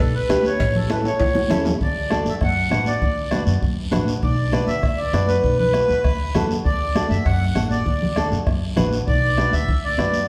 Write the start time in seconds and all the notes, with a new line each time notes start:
0.00 B1 A4, cowbell
0.15 B4
0.29 D2 D4 G4 B4, bombo rim, cowbell, high conga, short guiro
0.45 C#5, short guiro
0.60 A1, bombo low, cowbell, long guiro
0.75 A4, low conga
0.89 C#4 E4 A4 B4, bombo rim, cowbell, high conga, short guiro
1.05 C#5, high timbale, short guiro
1.20 C#2, bombo low, cowbell, high conga, high timbale, long guiro
1.35 high conga, high timbale
1.50 E2 C#4 E4 A4, bombo rim, cowbell, low conga, low timbale, short guiro
1.65 low conga, low timbale, short guiro
1.81 D2 D5, bombo low, high conga, long guiro
2.10 D4 F#4 A4, bombo rim, high conga, short guiro
2.26 F#2 E5, short guiro
2.41 F#2 F#5, bombo low, bombo rim, high conga, long guiro
2.70 A1 D4 F#4 B4, bombo rim, high conga, short guiro
2.86 D5, short guiro
3.02 D2, bombo low, high conga, long guiro
3.31 D4 F#4 B4, bombo rim, high conga, short guiro
3.46 F#2, short guiro
3.62 F#2, bombo low, high conga, long guiro
3.91 A1 D4 F#4 B4, bombo rim, high conga, low conga, short guiro
4.08 short guiro
4.22 B1 D5, bombo low, high conga, long guiro
4.52 D4 F#4 B4, bombo rim, high conga, short guiro
4.68 D2 E5, short guiro
4.83 D2, bombo low, bombo rim, high conga, long guiro
4.97 D5
5.13 F#2 D4 F#4 B4, bombo rim, high conga, short guiro
5.28 B4, short guiro
5.44 B1, bombo low, high conga, long guiro
5.59 B4, low conga
5.74 D4 F#4 B4, bombo rim, high conga, short guiro
5.89 D2, short guiro
6.04 D2, bombo low, bombo rim, high conga, long guiro
6.35 F#2 D4 F#4 A4, bombo rim, high conga, low conga, short guiro
6.51 short guiro
6.65 D2 D5, bombo low, high conga, long guiro
6.95 D4 F#4 A4, bombo rim, high conga, short guiro
7.10 F#2 E5, short guiro
7.25 F#2 F#5, bombo low, bombo rim, long guiro
7.55 A1 D4 F#4 A4, bombo rim, high conga, short guiro
7.71 D5, short guiro
7.86 D2, bombo low, high conga, long guiro
8.02 low conga
8.16 D4 F#4 A4, bombo rim, high conga, short guiro
8.32 F#2, short guiro
8.46 F#2, bombo low, bombo rim, high conga, long guiro
8.76 A1 D4 F#4 B4, bombo rim, high conga, low conga, short guiro
8.93 short guiro
9.07 B1 D5, bombo low, high conga, long guiro
9.37 D4 F#4 B4, bombo rim, high conga, short guiro
9.53 D2 E5, short guiro
9.68 D2, bombo low, high conga, long guiro
9.84 D5
9.98 F#2 D4 F#4 B4, bombo rim, high conga, short guiro
10.14 short guiro